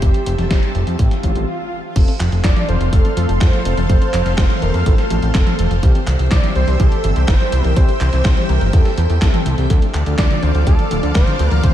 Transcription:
Already playing: G4 C5 E5 E6
0.02 F1 E3 G3 C4 G4 A5, kick, closed hi-hat
0.14 closed hi-hat
0.26 F1, closed hi-hat
0.38 F1 E3 G3 C4 G4, snare, closed hi-hat, high tom
0.51 F1, kick, snare, closed hi-hat
0.63 E3 G3 C4 G4, closed hi-hat
0.75 F1, closed hi-hat
0.87 F2, closed hi-hat
0.99 A1 E3 G3 C4 G4, kick, closed hi-hat, swell
1.11 snare, closed hi-hat
1.23 A1 E3 G3 C4 G4, kick, closed hi-hat, high tom
1.35 A1, closed hi-hat
1.96 F1 F3 A3 C4 A4 C5 F5 C6, kick, closed hi-hat, crash
2.08 C4, closed hi-hat
2.20 F1 F3, clap, closed hi-hat
2.32 F1 F3 A3 C4 A4, closed hi-hat
2.44 F1 F4 D5, kick, snare, clap, closed hi-hat
2.56 F3 A3 C4 A4, closed hi-hat, high tom
2.68 F1 A4 C5, closed hi-hat
2.81 F1, closed hi-hat, high tom
2.93 F1 F3 A3 C4 A4, kick, closed hi-hat
3.05 C4, closed hi-hat
3.17 F2 F3 A3 C4 A4, closed hi-hat
3.29 F1, closed hi-hat
3.41 F2 F4 C5, kick, snare, clap, closed hi-hat
3.53 F3 A3 C4 A4, closed hi-hat
3.65 F1 A4, closed hi-hat
3.77 F1, closed hi-hat, high tom
3.89 F1 F3 A3 C4 A4 C5, kick, closed hi-hat
4.02 C4, closed hi-hat
4.14 F1 F3, clap, closed hi-hat
4.26 F1 F3 A3 C4 A4, snare, closed hi-hat
4.38 F1 F4, kick, snare, clap, closed hi-hat
4.50 F3 A3 C4 A4, closed hi-hat, high tom
4.62 F1 A4 A#4, closed hi-hat
4.74 F2, closed hi-hat, high tom
4.86 A1 F3 A3 C4 A4, kick, closed hi-hat
4.98 C4, snare, closed hi-hat
5.10 A1 F3 A3 C4 A4, closed hi-hat
5.23 A1, closed hi-hat
5.35 F1 F4 A4, kick, snare, clap, closed hi-hat
5.47 F3 A3 C4 A4, closed hi-hat, high tom
5.59 F1 A4, closed hi-hat
5.71 F1, closed hi-hat
5.83 C2 E3 G3 C4 G4 E5 G5 E6, kick, closed hi-hat
5.95 C4, closed hi-hat
6.07 C2 E3, clap, closed hi-hat
6.19 C2 E3 G3 C4 G4, closed hi-hat
6.31 C2 E4 D5, kick, snare, clap, closed hi-hat
6.43 E3 G3 C4 G4, closed hi-hat, high tom
6.56 C2 G4 C5, closed hi-hat
6.68 C2, closed hi-hat, high tom
6.80 C2 E3 G3 C4 G4 A4, kick, closed hi-hat
6.92 C4, closed hi-hat
7.04 G1 E3 G3 C4 G4, closed hi-hat
7.16 C2, closed hi-hat
7.28 G1 E4 C5, kick, snare, clap, closed hi-hat
7.40 E3 G3 C4 G4, closed hi-hat
7.52 C2 G4, closed hi-hat
7.64 C2, closed hi-hat, high tom
7.76 C2 E3 G3 C4 G4 C5, kick, closed hi-hat
7.89 C4, closed hi-hat
8.01 C2 E3, clap, closed hi-hat
8.13 C2 E3 G3 C4 G4, snare, closed hi-hat
8.25 C2 E4, kick, snare, clap, closed hi-hat
8.37 E3 G3 C4 G4, closed hi-hat, high tom
8.49 C2 G4 A#4, closed hi-hat
8.61 G1, closed hi-hat, high tom
8.73 E2 E3 G3 C4 G4 A4, kick, closed hi-hat
8.85 C4, snare, closed hi-hat
8.97 E2 E3, closed hi-hat
9.10 E2, closed hi-hat
9.22 C2 E3 G3 C4 E4 A4, kick, snare, clap, closed hi-hat
9.34 E3, closed hi-hat, high tom
9.46 C2 G4, closed hi-hat
9.58 C2 E3 G3 C4 G4, closed hi-hat
9.70 D2 D3 F3 A3 D4 A4 D5 F5 D6, kick, closed hi-hat
9.82 A3, closed hi-hat
9.94 D2 D3, clap, closed hi-hat
10.06 D2 F3 A3 D4 A4, closed hi-hat
10.18 D2 D4 D5, kick, snare, clap, closed hi-hat
10.31 D3 F3 A3 D4 A4, closed hi-hat, high tom
10.43 D2 F4 C5, closed hi-hat
10.55 D2, closed hi-hat, high tom
10.67 D2 D3 F3 A3 D4 A4, kick, closed hi-hat
10.79 A3, closed hi-hat
10.91 D1 D3 F3 A3 D4 A4, closed hi-hat
11.03 D2, closed hi-hat
11.15 D1 D4 C5, kick, snare, clap, closed hi-hat
11.27 D3 F3 A3 D4 A4, closed hi-hat
11.39 D2 F4, closed hi-hat
11.51 D2, closed hi-hat, high tom
11.64 D2 D3 F3 A3 D4 A4 C5, kick, closed hi-hat

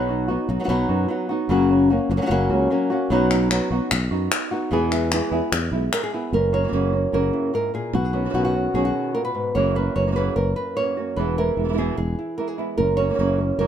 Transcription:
Already playing: B1 B2 F#3 B3 D#4 F#4
0.09 B3 D#4 F#4
0.28 B3 D#4 F#4
0.48 B1 F#3 B3 D#4 F#4, muted nylon-string guitar stroke
0.60 F#3 B3 D#4 F#4
0.64 F#3 B3 D#4 F#4
0.68 B1 B2 F#3 B3 D#4 F#4, muted nylon-string guitar stroke
0.89 F#2 B3 D#4 F#4
1.08 F#3 B3 D#4 F#4
1.29 B3 D#4 F#4
1.49 F#1 C#3 F#3 A#3 C#4 F#4
1.70 A#3 C#4 F#4
1.90 A#3 C#4 F#4
2.10 F#1 F#3 A#3 C#4 F#4, muted nylon-string guitar stroke
2.17 F#3 A#3 C#4 F#4
2.21 F#3 A#3 C#4 F#4
2.26 F#1 F#3 A#3 C#4 F#4
2.30 C#3 F#3 A#3 C#4 F#4, muted nylon-string guitar stroke
2.50 C#2 A#3 C#4 F#4
2.70 F#3 A#3 C#4 F#4
2.90 A#3 C#4 F#4
3.10 B1 B2 F#3 B3 D#4 F#4
3.31 B3 D#4 F#4, clap
3.50 F#3 B3 D#4 F#4, clap
3.71 B1 B3 D#4 F#4
3.91 B1, muted nylon-string guitar stroke, clap
4.11 F#2 B3 D#4 F#4
4.32 clap
4.51 B3 D#4 F#4
4.71 E2 B2 E3 G#3 B3 E4 G#4
4.92 G#3 B3 E4, clap
5.12 E3 G#3 B3 E4 G#4, clap
5.31 E2 G#3 B3 E4 G#4
5.52 E2, muted nylon-string guitar stroke, clap
5.72 B1 G#3 B3 E4
5.93 A#4, clap
6.03 G#4
6.13 B3 E4 G#4
6.33 F#1 F#2 A#4, muted nylon-string guitar stroke
6.53 A#3 C#4 F#4 C#5
6.64 E3 A#3 C#4 F#4
6.68 E3 A#3 C#4 F#4
6.72 F#1 C#3 E3 A#3 C#4 F#4
6.92 A#3 C#4 F#4
7.12 F#1 C#3 E3 A#3 C#4 F#4 A#4
7.33 E4
7.53 G#2 A#4, muted nylon-string guitar stroke
7.74 A#2 G#4
7.93 B1 B2 F#4, muted nylon-string guitar stroke
8.04 G#4
8.13 D#3 B3 C#4 F#4
8.25 B2 D#3 C#4 F#4
8.29 B2 D#3 C#4 F#4
8.34 B1 B2 D#3 C#4 F#4
8.45 F#4
8.54 D#3 C#4 F#4
8.74 B1 B2 D#3 C#4 F#4 G#4
8.85 F#4
9.15 A#2 A#4, muted nylon-string guitar stroke
9.25 B4
9.35 G#2
9.55 F#1 F#2 C#3 E3 A#3 C#4 E4 F#4 C#5
9.75 A#3 C#4 F#4 B4
9.96 F#1 A#3 C#4 F#4 C#5
10.07 E3 A#3 C#4 F#4
10.12 E3 A#3 C#4 F#4
10.16 C#3 E3 A#3 C#4 F#4 B4
10.36 F#1 A#4, muted nylon-string guitar stroke
10.56 B4
10.77 E3 A#3 C#4 F#4 C#5
10.97 A#3 C#4 F#4
11.16 E1 B2 E3 G#3 B3 E4 B4
11.37 G#3 B3 E4 A#4
11.57 E1 G#3 B3 E4
11.64 E3 G#3 B3 E4
11.69 E3 G#3 B3 E4
11.73 E3 G#3 B3 E4
11.78 B2 E3 G#3 B3 E4 G#4
11.97 E1 G#4, muted nylon-string guitar stroke
12.19 E4
12.38 E3 G#3 B3 E4 A#4
12.48 G#4
12.58 G#3 B3 E4
12.78 F#1 F#2 A#4, muted nylon-string guitar stroke
12.97 A#3 C#4 F#4 C#5
13.09 E3 A#3 C#4 F#4
13.14 E3 A#3 C#4 F#4
13.19 F#1 C#3 E3 A#3 C#4 E4 F#4
13.38 A#3 C#4 F#4
13.58 F#1 C#3 E3 A#3 C#4 F#4 A#4

